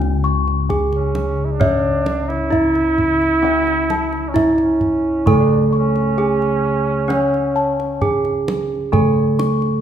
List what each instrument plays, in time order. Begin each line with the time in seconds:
Already playing: kettle gongs C#2 C#3 C#4 G#5, bronze metallophone C#3 C#4
0.02 kendang slap
0.24 kettle gongs C#6
0.47 kendang slap
0.69 kettle gongs D4 G#5, bronze metallophone G#4, kendang low
0.92 flugelhorn C#4, kendang slap
1.15 kendang high
1.45 flugelhorn E4
1.52 flugelhorn D4
1.60 bronze metallophone C#4 C#5, kettle gongs E5, kendang low
2.06 kettle gongs C#5, kendang high
2.28 flugelhorn E4, kendang slap
2.50 kettle gongs D4 E5, bronze metallophone E4, kendang low
2.75 kendang slap
2.98 kendang low
3.22 kendang slap
3.42 bronze metallophone C#3 C#4, kettle gongs C#4 E5
3.67 kendang slap
3.90 kettle gongs A5, kendang high
4.13 kendang slap
4.29 flugelhorn C#4
4.34 kettle gongs D4 E5, bronze metallophone E4, kendang high, kendang low
4.54 flugelhorn D4, kendang slap
4.62 flugelhorn C#4
4.81 kendang low
5.26 kettle gongs C#3 G#5, bronze metallophone A3 A4, flugelhorn C#4, kendang low
5.39 flugelhorn D4
5.68 flugelhorn D4
5.73 flugelhorn C#4, kettle gongs C#6
5.96 kendang slap
6.18 kettle gongs D4 G#5, bronze metallophone G#4
6.42 kendang slap
7.08 bronze metallophone C#4 C#5, kettle gongs C#5 G#5, kendang high
7.34 kendang slap
7.56 kettle gongs A5
7.80 kendang slap
8.01 kettle gongs D4 G#5, bronze metallophone G#4, kendang low
8.25 kendang slap
8.48 kendang high
8.92 kettle gongs C#3 G#5, bronze metallophone A3 A4, kendang low
9.39 kettle gongs C#6, kendang high
9.62 kendang slap